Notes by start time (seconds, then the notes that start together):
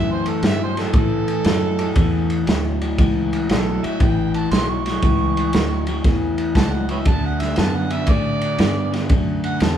Already playing: F#2 A2 E3
0.12 C5
0.26 A4, ride
0.43 G2 A2 F#3 E5, snare, ride
0.63 C5
0.77 A2 F#3 A4, snare, ride
0.93 A2 E3 A4, kick, ride
1.28 ride
1.44 F#2 A2 F#3, snare, ride
1.79 A2 F#3, ride
1.96 E2 A2 E3, kick, ride
2.30 ride
2.47 D2 A2 F#3, snare, ride
2.81 A2 F#3, ride
2.98 C#2 A2 E3, kick, ride
3.33 ride
3.49 B1 A2 F#3 D4 F#4 A4, snare, ride
3.83 A2 F#3 E5, muted fingered electric bass stroke, ride
4.00 A1 A2 E3 G5, kick, ride
4.34 A5, ride
4.51 B1 A2 F#3 C6, snare, ride
4.69 C#6
4.86 A2 F#3, snare, ride
5.02 C#2 A2 E3, kick, ride
5.37 ride
5.53 D2 A2 F#3, snare, ride
5.87 A2 F#3, ride
6.04 E2 A2 E3, kick, snare, ride
6.38 ride
6.55 C#2 A2 F#3 A5, kick, snare, ride
6.73 F#5
6.89 A2 F#3 B4 C#5 E5, ride
7.05 D2 D3 A3 A5, kick, ride
7.26 F#5
7.40 E5, snare, ride
7.56 F#2 D3 B3 A5, snare, ride
7.75 F#5
7.90 D3 B3 E5, ride
8.07 A2 D3 A3 D5, kick, ride
8.41 ride
8.58 G2 D3 B3, snare, ride
8.93 D3 B3, snare, ride
9.09 F#2 D3 A3, kick, ride
9.44 F#5, ride
9.60 E2 D3 B3 A5, snare, ride